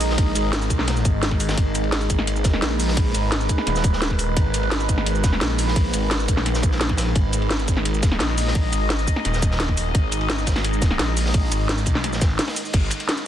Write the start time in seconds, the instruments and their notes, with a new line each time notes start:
Already playing: detuned saw bass A#1, ambient pad G#3 D#4 A#4 D#5
0.01 open hi-hat, cabasa
0.10 snare
0.18 kick, closed hi-hat, ride
0.35 detuned saw bass G#1, closed hi-hat, ride, cabasa
0.53 snare, closed hi-hat, ride
0.62 cabasa
0.70 detuned saw bass B1, kick, closed hi-hat, ride, cabasa
0.79 snare
0.87 snare, closed hi-hat, ride
0.96 ride, cabasa
1.05 detuned saw bass G#1, kick, closed hi-hat, ride, cabasa
1.22 snare, closed hi-hat, ride
1.31 kick, snare
1.40 open hi-hat, ride, cabasa
1.49 snare, ride, cabasa
1.57 detuned saw bass G#1, ambient pad B4, kick, closed hi-hat, ride
1.75 closed hi-hat, ride, cabasa
1.84 ride
1.92 snare, closed hi-hat, ride
2.01 ride, cabasa
2.10 detuned saw bass G#1, kick, closed hi-hat, ride, cabasa
2.19 snare
2.27 closed hi-hat, ride
2.36 cabasa
2.44 kick, snare, closed hi-hat, ride, cabasa
2.54 snare
2.62 detuned saw bass A#1, snare, closed hi-hat, ride
2.79 open hi-hat, cabasa
2.88 snare
2.97 kick, closed hi-hat, ride
3.15 detuned saw bass G#1, closed hi-hat, ride, cabasa
3.32 snare, closed hi-hat, ride
3.41 cabasa
3.49 kick, closed hi-hat, ride, cabasa
3.58 snare
3.67 detuned saw bass D#1, snare, closed hi-hat, ride
3.75 snare, cabasa
3.84 kick, closed hi-hat, ride, cabasa
3.93 snare
4.02 snare, closed hi-hat, ride
4.10 kick, snare
4.19 open hi-hat, ride, cabasa
4.37 detuned saw bass G#1, kick, closed hi-hat, ride
4.54 closed hi-hat, ride, cabasa
4.63 ride
4.72 snare, closed hi-hat, ride
4.80 ride, cabasa
4.89 detuned saw bass G#1, kick, closed hi-hat, ride, cabasa
4.98 snare
5.06 closed hi-hat, ride
5.15 cabasa
5.23 kick, snare, closed hi-hat, ride, cabasa
5.33 snare
5.41 detuned saw bass A#1, snare, closed hi-hat, ride
5.58 open hi-hat, cabasa
5.68 snare
5.76 kick, closed hi-hat, ride
5.93 detuned saw bass G#1, closed hi-hat, ride, cabasa
6.11 snare, closed hi-hat, ride
6.20 cabasa
6.28 detuned saw bass A#1, kick, closed hi-hat, ride, cabasa
6.37 snare
6.46 snare, closed hi-hat, ride
6.54 snare, cabasa
6.63 kick, closed hi-hat, ride, cabasa
6.72 snare
6.80 snare, closed hi-hat, ride
6.89 kick, snare, ride
6.97 snare, open hi-hat, ride, cabasa
7.15 ambient pad D#5, kick, closed hi-hat, ride
7.33 closed hi-hat, ride, cabasa
7.42 ride
7.50 snare, closed hi-hat, ride
7.59 ride, cabasa
7.68 detuned saw bass G#1, kick, closed hi-hat, ride, cabasa
7.77 snare
7.85 closed hi-hat, ride
7.94 cabasa
8.03 kick, snare, closed hi-hat, ride, cabasa
8.12 snare
8.20 detuned saw bass A#1, snare, closed hi-hat, ride
8.38 open hi-hat, cabasa
8.47 snare
8.55 kick, closed hi-hat, ride
8.73 detuned saw bass G#1, closed hi-hat, ride, cabasa
8.90 snare, closed hi-hat, ride
8.99 cabasa
9.08 kick, closed hi-hat, ride, cabasa
9.16 snare
9.25 detuned saw bass D#1, snare, closed hi-hat, ride
9.33 snare, cabasa
9.42 kick, closed hi-hat, ride, cabasa
9.51 snare
9.60 snare, closed hi-hat, ride
9.69 kick, snare
9.77 open hi-hat, ride, cabasa
9.95 detuned saw bass G#1, kick, closed hi-hat, ride
10.12 closed hi-hat, ride, cabasa
10.21 ride
10.30 snare, closed hi-hat, ride
10.38 ride, cabasa
10.47 detuned saw bass G#1, kick, snare, closed hi-hat, ride, cabasa
10.56 snare, ride
10.64 closed hi-hat, ride
10.73 cabasa
10.82 kick, snare, closed hi-hat, ride, cabasa
10.91 snare
10.99 detuned saw bass A#1, snare, closed hi-hat, ride
11.17 open hi-hat, cabasa
11.26 snare
11.34 kick, closed hi-hat, ride
11.52 detuned saw bass G#1, closed hi-hat, ride, cabasa
11.69 snare, closed hi-hat, ride
11.78 cabasa
11.86 detuned saw bass B1, kick, closed hi-hat, ride, cabasa
11.95 snare
12.04 snare, closed hi-hat, ride
12.13 snare, cabasa
12.21 detuned saw bass G#1, kick, snare, closed hi-hat, ride, cabasa
12.39 snare, closed hi-hat, open hi-hat
12.48 snare, ride
12.56 open hi-hat, cabasa
12.65 cabasa
12.73 detuned saw bass G#1, kick, closed hi-hat, crash, ride
12.90 closed hi-hat, ride, cabasa
13.00 closed hi-hat, ride
13.09 snare, closed hi-hat, ride
13.17 closed hi-hat, ride